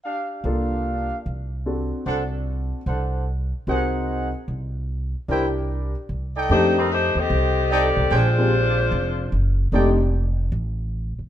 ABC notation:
X:1
M:4/4
L:1/8
Q:"Swing" 1/4=149
K:Fmix
V:1 name="Trumpet section"
[DGf]4- [DGf] z3 | z2 [DAc^f] z3 [DAcf]2 | z2 [E_Ac_g]3 z3 | z2 [=EBcg] z4 [_EAdg]- |
[EAdg]2 z4 [EAdg] z | [D_Acg] z6 z | [EAdg] z6 z |]
V:2 name="Saxophone section"
z8 | z8 | z8 | z8 |
[A,EGc] [G,CEB] [A,EGc] [CGAe]3 [CGAd]2 | [_A,DFc]6 z2 | z8 |]
V:3 name="Grand piano"
z2 [B,DFA]3 z3 | [CD^FA]4- [CDFA] z3 | z2 [CE_GB]3 z3 | z2 [D=EGB]3 z3 |
[A,CDEG] z6 z | z [_A,CDFG] z6 | [A,CDEG] z6 z |]
V:4 name="Upright bass" clef=bass
z2 C,,3 z C,,2- | C,, z C,,3 z C,,2- | C,, z C,,3 z C,,2- | C,, z C,,3 z C,,2 |
F,,3 E,, C,,3 C,, | B,,,4 F,,,2 _G,,,2 | F,,,4 A,,,3 z |]